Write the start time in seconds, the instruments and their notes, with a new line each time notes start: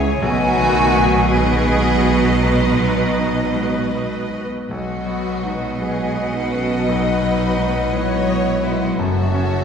Already playing: double bass section C#2, cello section C#2, grand piano C#2 E4 G#4 E5, harp C#3 E3 C#4 C#5, french horn section E3 C#4, viola section E4 G#4, violin section C#5, flute G#5
0.21 double bass section B1, grand piano B1, cello section B2, harp B2, clarinet A3, french horn section B3 D#4, viola section B3 B4, violin section F#4 D#5
0.59 harp D#3, grand piano B3
0.96 harp A3, grand piano D#4
1.31 harp G#3, french horn section B3 D#4, clarinet B3, violin section G#4, grand piano B4
1.69 harp B3, grand piano D#5
2.05 grand piano B4, harp D#5
2.41 grand piano B1, harp B2, clarinet G#3, french horn section B3 D#4, violin section D#4, flute D#5
2.80 harp G#3, grand piano B3
3.19 grand piano D#4
3.55 harp G#3, grand piano B4
3.93 harp B3, grand piano D#5
4.31 grand piano B4, harp D#5
4.67 double bass section B1, grand piano B1, cello section B2, harp B2, viola section B3 B4, clarinet B3, french horn section B3 D#5, violin section F#4, flute F#5
4.71 violin section D#5
5.04 harp F#3, grand piano B3
5.42 harp G#3, grand piano D#4
5.79 harp F#3, clarinet B3, violin section G#4, grand piano B4
6.15 harp B3, grand piano D#5
6.34 clarinet D#4, violin section B4
6.51 clarinet C#4, violin section A4, harp B4, grand piano B4
6.86 grand piano B1, harp B2, clarinet D#4, violin section B4
7.22 harp F#3, grand piano B3
7.57 harp G#3, grand piano D#4
7.93 harp F#3, clarinet E4, grand piano B4, violin section C#5
8.28 harp B3, grand piano D#5
8.63 clarinet G#3, violin section E4, grand piano B4, harp B4
8.99 double bass section F#1, grand piano F#2, harp F#2, cello section F#2, french horn section A3 F#4, clarinet A3, viola section C#4 A4, violin section F#4 E5, flute A5
9.34 harp C#3, grand piano C#4